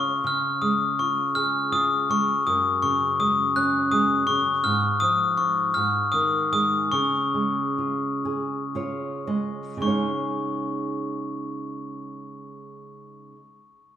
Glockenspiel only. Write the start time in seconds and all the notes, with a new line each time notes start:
Already playing: C#6
0.27 F6
0.62 D#6
0.99 C#6
1.35 F6
1.73 D#6
2.11 C#6
2.47 D#6
2.82 C#6
3.20 D#6
3.56 F#6
3.92 D#6
4.27 C#6
4.64 F6
5.00 D#6
5.37 C#6
5.74 F6
6.12 D#6
6.53 D#6
6.92 C#6
9.82 C#6